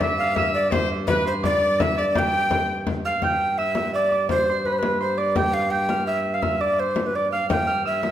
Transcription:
0.00 3.21 G2 medium
0.00 0.17 E5 medium
0.00 0.35 E5 medium
0.00 0.42 C6 medium
0.00 0.54 D6 medium
0.00 0.26 E6 medium
0.00 frame drum medium
0.18 0.36 F5 medium
0.18 0.44 F6 medium
0.18 frame drum soft
0.35 0.53 E5 loud
0.35 0.73 E5 medium
0.35 1.51 E6 medium
0.35 frame drum medium
0.54 0.71 D5 medium
0.54 1.43 D6 medium
0.54 frame drum soft
0.71 0.88 C5 medium
0.71 0.90 C5 medium
0.71 1.15 C6 medium
0.71 frame drum medium
0.90 frame drum soft
1.07 1.24 B4 medium
1.07 1.25 B4 medium
1.07 1.32 B5 medium
1.07 frame drum medium
1.26 1.33 C5 medium
1.26 2.56 C6 medium
1.43 1.83 D5 medium
1.43 1.84 D5 medium
1.43 1.61 D6 medium
1.43 frame drum medium
1.61 1.97 D6 medium
1.61 frame drum soft
1.80 1.97 E5 medium
1.80 2.00 E5 medium
1.80 2.93 E6 medium
1.80 frame drum medium
1.98 2.06 D5 medium
1.98 2.20 D5 medium
1.98 3.19 D6 medium
1.98 frame drum soft
2.15 2.83 G5 medium
2.15 2.75 G5 loud
2.15 3.21 G6 medium
2.15 frame drum medium
2.51 frame drum medium
2.87 frame drum medium
3.05 3.25 F5 medium
3.05 3.65 F6 medium
3.21 7.49 G2 medium
3.21 3.59 G5 loud
3.21 4.29 G6 medium
3.21 frame drum medium
3.40 frame drum soft
3.58 3.94 E5 loud
3.58 3.77 E6 medium
3.58 frame drum soft
3.75 4.91 E6 medium
3.75 frame drum medium
3.94 4.27 D5 medium
3.94 4.11 D6 medium
4.12 5.17 D6 medium
4.12 frame drum soft
4.29 4.67 C5 loud
4.29 4.49 C6 medium
4.29 frame drum medium
4.48 4.72 C6 medium
4.48 frame drum soft
4.65 4.74 B4 medium
4.65 4.79 B5 medium
4.65 frame drum soft
4.73 4.80 C5 medium
4.79 5.01 B4 medium
4.79 5.06 B5 medium
4.83 frame drum medium
5.00 5.19 C5 medium
5.00 6.31 C6 medium
5.18 5.38 D5 medium
5.18 6.40 D6 medium
5.18 frame drum soft
5.36 5.55 G5 medium
5.36 5.71 G6 medium
5.36 frame drum medium
5.54 5.72 F5 medium
5.54 frame drum soft
5.71 6.06 G5 loud
5.71 6.77 G6 medium
5.71 frame drum soft
5.89 6.14 F6 medium
5.89 frame drum medium
6.07 6.35 E5 medium
6.07 6.40 E6 medium
6.25 frame drum soft
6.34 6.44 F5 medium
6.34 6.48 F6 medium
6.42 6.62 E5 medium
6.42 7.38 E6 medium
6.42 frame drum medium
6.61 6.81 D5 medium
6.61 7.16 D6 medium
6.79 7.08 C5 medium
6.79 8.10 C6 medium
6.79 frame drum soft
6.96 frame drum medium
7.07 7.17 B4 medium
7.14 7.31 D5 medium
7.14 8.11 D6 medium
7.14 frame drum soft
7.32 7.48 F5 medium
7.32 7.67 F6 medium
7.49 8.11 G2 medium
7.49 7.83 G5 medium
7.49 8.11 G6 medium
7.49 frame drum medium
7.67 7.91 F6 medium
7.67 frame drum soft
7.85 8.11 E5 medium
7.85 8.04 E6 medium
7.85 frame drum soft
8.03 8.11 E6 medium
8.03 frame drum medium

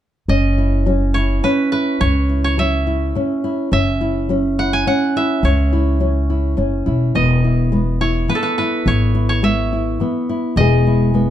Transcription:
0.28 1.39 F#1 medium
0.28 0.80 F#2 medium
0.28 0.86 C#4 medium
0.28 1.84 D#5 medium
0.58 1.15 E4 soft
0.86 1.38 F#3 medium
0.86 1.44 C#4 medium
1.14 1.73 E4 soft
1.14 2.00 C#5 medium
1.43 1.95 C#3 medium
1.43 2.01 C#4 medium
1.43 1.72 B4 medium
1.72 2.03 E4 soft
1.72 3.50 B4 medium
2.00 3.11 C#2 medium
2.00 2.52 F#2 medium
2.00 2.58 C#4 medium
2.00 2.44 C#5 medium
2.29 2.87 E4 soft
2.44 4.10 C#5 medium
2.58 3.09 F#3 medium
2.58 3.16 C#4 soft
2.58 3.72 E5 medium
2.87 3.44 E4 soft
3.15 3.67 C#3 medium
3.15 3.71 C#4 medium
3.44 3.74 E4 medium
3.71 4.82 F#1 medium
3.71 4.23 F#2 medium
3.71 4.30 C#4 medium
3.71 5.16 E5 medium
4.01 4.58 E4 medium
4.29 4.80 F#3 medium
4.29 4.87 C#4 medium
4.59 5.16 E4 soft
4.59 4.87 F#5 medium
4.73 6.03 G#5 medium
4.86 5.38 C#3 medium
4.86 5.44 C#4 medium
4.86 6.27 F#5 medium
5.16 5.46 E4 soft
5.16 6.66 E5 medium
5.43 6.53 C#2 medium
5.43 5.95 F#2 medium
5.43 6.00 C#4 medium
5.43 7.10 C#5 medium
5.73 6.29 E4 soft
6.00 6.52 F#3 soft
6.00 6.57 C#4 soft
6.30 6.86 E4 soft
6.57 6.83 F#1 medium
6.57 7.09 C#3 medium
6.57 7.15 C#4 medium
6.86 7.12 E1 medium
6.86 7.44 E4 soft
7.15 8.25 E1 medium
7.15 7.66 E3 medium
7.15 7.72 B3 medium
7.15 8.70 D#5 medium
7.44 8.00 E4 soft
7.72 8.23 G#3 medium
7.72 8.29 B3 medium
8.01 8.59 E4 soft
8.01 8.87 C#5 medium
8.28 8.80 E3 medium
8.28 8.86 B3 medium
8.28 8.42 B4 medium
8.35 10.25 A4 medium
8.43 8.58 B4 medium
8.58 9.14 E4 soft
8.58 10.35 B4 medium
8.86 9.96 G#1 medium
8.86 9.37 E3 medium
8.86 9.43 B3 medium
8.86 9.29 C#5 medium
9.15 9.72 E4 medium
9.29 10.95 C#5 medium
9.43 9.94 G#3 medium
9.43 10.01 B3 medium
9.43 10.63 E5 medium
9.73 10.29 E4 soft
10.00 10.51 E3 medium
10.00 10.59 B3 medium
10.29 10.59 E4 medium
10.56 11.30 E1 medium
10.56 11.08 E3 medium
10.56 11.13 G#3 medium
10.56 11.14 B3 medium
10.56 10.87 E4 medium
10.56 11.30 D#5 medium
10.60 11.30 G#4 medium
10.87 11.30 E4 medium
11.14 11.30 G#3 medium
11.14 11.30 B3 medium

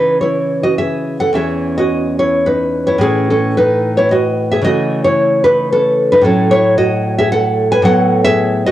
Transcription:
0.00 1.29 C#3 medium
0.00 1.30 E3 medium
0.00 0.20 D#4 medium
0.00 0.20 B4 medium
0.21 0.61 E4 medium
0.21 0.62 C#5 medium
0.63 0.77 F#4 medium
0.63 0.78 D#5 medium
0.78 1.18 G#4 medium
0.78 1.19 E5 medium
1.20 1.34 A4 medium
1.20 1.35 F#5 medium
1.33 2.97 E2 medium
1.33 2.97 E3 medium
1.33 2.97 C#4 medium
1.33 1.77 G#4 medium
1.33 1.77 E5 medium
1.78 2.17 F#4 medium
1.78 2.18 D#5 medium
2.19 2.45 E4 medium
2.19 2.45 C#5 medium
2.46 2.85 D#4 medium
2.46 2.86 B4 medium
2.87 3.01 E4 medium
2.87 3.01 C#5 medium
2.98 4.59 A2 medium
2.98 4.60 E3 medium
2.98 3.28 C#4 medium
2.98 3.28 G#4 loud
3.30 3.56 C#4 medium
3.30 3.56 A4 medium
3.57 3.96 D#4 medium
3.57 3.96 B4 loud
3.97 4.11 E4 medium
3.97 4.11 C#5 medium
4.11 4.49 F#4 medium
4.11 4.50 D#5 loud
4.52 4.65 G#4 medium
4.52 4.64 E5 loud
4.62 6.20 C#3 medium
4.62 6.21 E3 medium
4.62 6.21 A3 medium
4.62 5.03 F#4 medium
4.62 5.03 D#5 loud
5.04 5.43 E4 medium
5.04 5.43 C#5 loud
5.44 5.71 D#4 medium
5.44 5.71 B4 loud
5.72 6.10 C#4 medium
5.72 6.11 A4 loud
6.12 6.25 D#4 medium
6.12 6.24 B4 loud
6.21 7.79 A2 medium
6.21 7.80 F#3 medium
6.21 7.81 A3 medium
6.21 6.50 A4 loud
6.26 6.50 C#4 medium
6.51 6.77 E4 medium
6.51 6.77 C#5 loud
6.78 7.15 F#4 medium
6.78 7.16 D#5 loud
7.18 7.32 G#4 medium
7.18 7.31 E5 loud
7.32 7.70 A4 medium
7.32 7.70 F#5 loud
7.72 7.84 B4 medium
7.72 7.85 G#5 loud
7.82 8.71 A2 medium
7.82 8.71 F#3 medium
7.82 8.71 B3 medium
7.82 8.24 F#5 loud
7.86 8.24 A4 medium
8.25 8.64 G#4 medium
8.25 8.65 E5 loud
8.66 8.71 F#4 medium
8.66 8.71 D#5 loud

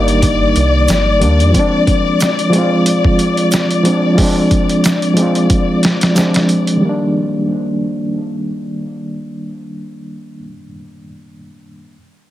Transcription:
0.00 0.53 G1 medium
0.00 1.20 D#3 medium
0.00 1.21 G3 medium
0.00 1.22 A#3 medium
0.00 1.24 D4 medium
0.00 1.21 D#4 medium
0.00 6.83 D5 medium
0.08 closed hi-hat soft
0.22 kick loud
0.22 closed hi-hat medium
0.56 0.88 C2 medium
0.56 closed hi-hat medium
0.88 1.23 G1 medium
0.88 snare loud
0.88 closed hi-hat medium
0.88 shaker medium
1.20 1.41 D#2 loud
1.20 1.50 D#3 medium
1.20 1.51 G3 medium
1.20 1.51 A#3 medium
1.20 closed hi-hat medium
1.24 1.52 D4 medium
1.40 1.53 F2 medium
1.40 closed hi-hat soft
1.51 2.48 F3 medium
1.51 2.49 G#3 medium
1.51 kick loud
1.55 2.51 C4 medium
1.55 closed hi-hat medium
1.59 2.52 D4 medium
1.87 kick medium
1.87 closed hi-hat medium
2.20 snare medium
2.20 closed hi-hat medium
2.20 shaker medium
2.39 closed hi-hat soft
2.50 3.80 F3 medium
2.50 3.82 G#3 medium
2.50 closed hi-hat medium
2.56 3.83 C4 medium
2.56 3.85 F4 medium
2.86 closed hi-hat medium
3.05 kick medium
3.19 closed hi-hat medium
3.37 closed hi-hat soft
3.52 snare loud
3.52 closed hi-hat medium
3.52 shaker medium
3.71 closed hi-hat soft
3.83 4.14 F3 medium
3.83 4.14 G#3 medium
3.83 4.15 C4 medium
3.83 closed hi-hat medium
3.88 4.16 D4 medium
4.15 5.12 F3 medium
4.15 5.13 G#3 medium
4.15 kick medium
4.15 open hi-hat medium
4.20 5.15 C4 medium
4.20 5.16 D4 medium
4.51 kick medium
4.51 closed hi-hat medium
4.69 closed hi-hat soft
4.84 snare loud
4.84 closed hi-hat medium
4.84 shaker medium
5.02 closed hi-hat soft
5.14 6.11 F3 medium
5.14 6.13 G#3 medium
5.14 closed hi-hat medium
5.19 6.14 C4 medium
5.19 6.16 F4 medium
5.35 closed hi-hat soft
5.50 kick loud
5.50 closed hi-hat medium
5.83 snare loud
5.83 closed hi-hat medium
6.01 snare medium
6.01 closed hi-hat medium
6.15 6.78 F3 medium
6.15 6.79 G#3 medium
6.15 6.79 C4 medium
6.15 snare medium
6.15 closed hi-hat medium
6.15 shaker medium
6.19 6.80 D4 medium
6.34 snare loud
6.34 closed hi-hat medium
6.49 closed hi-hat medium
6.67 closed hi-hat soft
6.77 10.37 D#3 medium
6.81 10.42 G3 medium
6.85 10.46 A#3 medium
6.89 10.50 D4 medium

